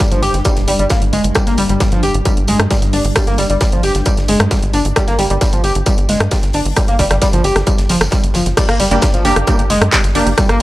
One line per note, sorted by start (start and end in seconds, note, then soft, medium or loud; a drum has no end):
0.00 8.62 G2 medium
0.00 0.03 G3 medium
0.00 kick loud
0.00 tambourine medium
0.11 0.19 G1 medium
0.11 0.20 F3 medium
0.11 closed hi-hat soft
0.22 0.31 G1 medium
0.22 0.31 G4 medium
0.22 open hi-hat loud
0.22 tambourine medium
0.34 0.42 G1 medium
0.34 snare soft
0.34 closed hi-hat soft
0.45 0.51 G3 medium
0.45 kick loud
0.45 closed hi-hat medium
0.45 tambourine medium
0.56 0.65 F1 medium
0.56 snare soft
0.56 closed hi-hat medium
0.68 0.76 G1 loud
0.68 0.71 G3 loud
0.68 open hi-hat loud
0.68 tambourine medium
0.79 0.87 G1 medium
0.79 0.85 G3 medium
0.79 closed hi-hat medium
0.89 0.96 A#3 medium
0.89 kick loud
0.89 snare loud
0.89 closed hi-hat medium
0.89 tambourine medium
1.02 1.10 G1 medium
1.02 closed hi-hat medium
1.13 1.21 G1 loud
1.13 1.21 G#3 medium
1.13 open hi-hat medium
1.13 tambourine medium
1.24 1.32 G1 medium
1.24 closed hi-hat soft
1.24 closed hi-hat medium
1.35 1.41 G3 medium
1.35 kick loud
1.35 cross-stick loud
1.35 closed hi-hat medium
1.35 tambourine medium
1.47 1.55 G1 medium
1.47 1.52 A#3 loud
1.47 snare soft
1.47 closed hi-hat medium
1.57 1.66 G1 loud
1.57 1.61 G3 medium
1.57 open hi-hat loud
1.57 tambourine medium
1.69 1.77 G1 medium
1.69 1.73 G3 medium
1.69 closed hi-hat medium
1.80 1.84 G3 medium
1.80 kick loud
1.80 snare loud
1.80 closed hi-hat medium
1.80 tambourine medium
1.92 2.00 G1 medium
1.92 2.00 F3 medium
1.92 closed hi-hat medium
2.03 2.11 G1 medium
2.03 2.12 G4 medium
2.03 open hi-hat medium
2.03 tambourine medium
2.14 2.22 G1 medium
2.14 closed hi-hat medium
2.25 2.31 G3 medium
2.25 kick loud
2.25 closed hi-hat medium
2.25 tambourine medium
2.37 2.45 G1 medium
2.37 closed hi-hat medium
2.47 2.56 G1 loud
2.47 2.57 G#3 loud
2.47 snare soft
2.47 open hi-hat loud
2.47 tambourine medium
2.59 2.68 G2 medium
2.59 cross-stick loud
2.59 closed hi-hat medium
2.71 2.74 G3 medium
2.71 kick loud
2.71 snare loud
2.71 closed hi-hat medium
2.71 tambourine medium
2.82 2.90 G1 medium
2.82 snare soft
2.82 closed hi-hat medium
2.93 3.01 G1 loud
2.93 2.99 D4 medium
2.93 open hi-hat medium
3.05 3.13 G1 medium
3.05 closed hi-hat soft
3.16 3.21 G3 medium
3.16 kick loud
3.16 cross-stick loud
3.16 closed hi-hat medium
3.16 tambourine medium
3.27 3.35 G1 medium
3.27 3.33 A#3 loud
3.27 closed hi-hat soft
3.38 3.47 G1 loud
3.38 3.42 G3 loud
3.38 snare soft
3.38 open hi-hat loud
3.38 tambourine medium
3.50 3.58 G1 loud
3.50 3.53 G3 medium
3.50 closed hi-hat soft
3.61 3.64 G3 medium
3.61 kick loud
3.61 snare loud
3.61 closed hi-hat medium
3.61 tambourine medium
3.72 3.80 G1 medium
3.72 3.81 F3 medium
3.72 closed hi-hat soft
3.83 3.92 G1 medium
3.83 3.92 G4 medium
3.83 open hi-hat medium
3.83 tambourine medium
3.95 4.03 G1 medium
3.95 snare soft
3.95 closed hi-hat soft
4.05 4.12 G3 medium
4.05 kick loud
4.05 closed hi-hat medium
4.05 tambourine medium
4.17 4.26 G1 medium
4.17 snare soft
4.17 closed hi-hat soft
4.28 4.37 G1 medium
4.28 4.37 G#3 loud
4.28 open hi-hat loud
4.28 tambourine medium
4.40 4.48 G2 loud
4.40 cross-stick loud
4.40 closed hi-hat soft
4.51 4.55 G3 medium
4.51 kick loud
4.51 snare loud
4.51 closed hi-hat medium
4.51 tambourine medium
4.62 4.71 G1 medium
4.62 closed hi-hat medium
4.73 4.82 G1 loud
4.73 4.79 D4 medium
4.73 open hi-hat medium
4.73 tambourine medium
4.85 4.93 G1 medium
4.85 closed hi-hat soft
4.96 5.02 G3 medium
4.96 kick loud
4.96 cross-stick loud
4.96 closed hi-hat medium
4.96 tambourine medium
5.07 5.16 G1 medium
5.07 5.13 A#3 loud
5.07 snare soft
5.07 closed hi-hat soft
5.19 5.27 G1 loud
5.19 5.22 G3 loud
5.19 open hi-hat loud
5.19 tambourine medium
5.30 5.38 G1 loud
5.30 5.34 G3 medium
5.30 closed hi-hat medium
5.41 5.45 G3 medium
5.41 kick loud
5.41 snare loud
5.41 closed hi-hat medium
5.41 tambourine loud
5.53 5.61 G1 medium
5.53 5.61 F3 medium
5.53 closed hi-hat medium
5.64 5.72 G1 loud
5.64 5.72 G4 medium
5.64 open hi-hat medium
5.64 tambourine medium
5.75 5.83 G1 medium
5.75 closed hi-hat medium
5.86 5.92 G3 medium
5.86 kick loud
5.86 closed hi-hat medium
5.86 tambourine medium
5.98 6.06 G1 medium
5.98 closed hi-hat medium
6.09 6.17 G1 loud
6.09 6.18 G#3 loud
6.09 snare soft
6.09 open hi-hat loud
6.09 tambourine medium
6.20 6.28 G2 medium
6.20 cross-stick loud
6.20 closed hi-hat medium
6.31 6.35 G3 medium
6.31 kick loud
6.31 snare loud
6.31 closed hi-hat medium
6.31 tambourine medium
6.43 6.51 G1 medium
6.43 snare soft
6.43 closed hi-hat medium
6.53 6.62 G1 loud
6.53 6.60 D4 medium
6.53 open hi-hat medium
6.65 6.74 G1 medium
6.65 closed hi-hat medium
6.76 6.82 G3 medium
6.76 kick loud
6.76 cross-stick medium
6.76 closed hi-hat loud
6.76 tambourine medium
6.88 6.96 G1 medium
6.88 6.94 A#3 loud
6.88 closed hi-hat medium
6.99 7.08 G1 loud
6.99 7.03 G3 loud
6.99 kick medium
6.99 snare soft
6.99 open hi-hat loud
6.99 tambourine medium
7.11 7.19 G1 loud
7.11 7.14 G3 medium
7.11 cross-stick medium
7.11 closed hi-hat medium
7.22 7.25 G3 medium
7.22 kick loud
7.22 snare loud
7.22 closed hi-hat loud
7.22 tambourine medium
7.33 7.41 G1 medium
7.33 7.42 F3 medium
7.33 closed hi-hat medium
7.44 7.53 G1 loud
7.44 7.53 G4 medium
7.44 open hi-hat medium
7.44 tambourine medium
7.56 7.64 G1 medium
7.56 cross-stick medium
7.56 snare soft
7.56 closed hi-hat soft
7.66 7.73 G3 medium
7.66 kick loud
7.66 closed hi-hat loud
7.66 tambourine medium
7.78 7.86 G1 medium
7.78 snare soft
7.78 closed hi-hat medium
7.89 7.98 G1 medium
7.89 7.95 F3 loud
7.89 snare loud
7.89 open hi-hat loud
7.89 tambourine medium
8.01 8.09 G1 medium
8.01 cross-stick loud
8.01 snare loud
8.01 closed hi-hat medium
8.01 tambourine medium
8.11 8.18 G3 loud
8.11 kick loud
8.11 snare loud
8.11 closed hi-hat medium
8.11 tambourine medium
8.23 8.31 G1 medium
8.23 closed hi-hat medium
8.34 8.43 G1 loud
8.34 8.40 F3 loud
8.34 snare loud
8.34 open hi-hat medium
8.34 tambourine medium
8.46 8.54 G1 medium
8.46 snare soft
8.46 closed hi-hat medium
8.57 8.63 G3 medium
8.57 kick loud
8.57 cross-stick medium
8.57 closed hi-hat loud
8.57 crash loud
8.57 tambourine loud
8.69 8.77 G1 medium
8.69 8.74 A#3 loud
8.69 cross-stick medium
8.69 snare soft
8.69 closed hi-hat medium
8.80 8.88 G1 loud
8.80 8.83 G3 loud
8.80 open hi-hat loud
8.80 tambourine medium
8.91 8.99 G1 loud
8.91 8.95 G3 medium
8.91 9.04 A#3 medium
8.91 9.05 D4 medium
8.91 9.04 G4 medium
8.91 closed hi-hat medium
9.02 9.06 G3 medium
9.02 kick loud
9.02 snare loud
9.02 closed hi-hat loud
9.02 tambourine loud
9.14 9.22 G1 medium
9.14 9.22 F3 medium
9.14 closed hi-hat medium
9.25 9.33 G1 loud
9.25 9.44 A#3 medium
9.25 9.44 D4 medium
9.25 9.44 G4 medium
9.25 9.33 G4 medium
9.25 open hi-hat loud
9.25 tambourine medium
9.36 9.44 G1 medium
9.36 cross-stick medium
9.36 closed hi-hat medium
9.47 9.53 G3 medium
9.47 9.61 A#3 medium
9.47 9.61 D4 medium
9.47 9.61 G4 loud
9.47 kick loud
9.47 closed hi-hat loud
9.47 tambourine medium
9.59 9.67 G1 medium
9.59 closed hi-hat medium
9.70 9.78 G1 loud
9.70 9.79 G#3 loud
9.70 snare soft
9.70 open hi-hat loud
9.70 tambourine medium
9.81 9.89 G2 loud
9.81 cross-stick loud
9.81 closed hi-hat medium
9.92 9.96 G3 medium
9.92 kick loud
9.92 snare loud
9.92 clap loud
9.92 closed hi-hat loud
9.92 tambourine medium
10.04 10.12 G1 medium
10.04 snare soft
10.04 closed hi-hat medium
10.15 10.23 G1 loud
10.15 10.29 A#3 medium
10.15 10.29 D4 medium
10.15 10.21 D4 medium
10.15 10.29 G4 loud
10.15 open hi-hat medium
10.15 open hi-hat loud
10.27 10.34 G1 medium
10.27 closed hi-hat medium
10.38 10.43 G3 medium
10.38 kick loud
10.38 cross-stick medium
10.38 closed hi-hat loud
10.38 tambourine medium
10.49 10.57 G1 medium
10.49 10.55 A#3 loud
10.49 cross-stick medium
10.49 closed hi-hat medium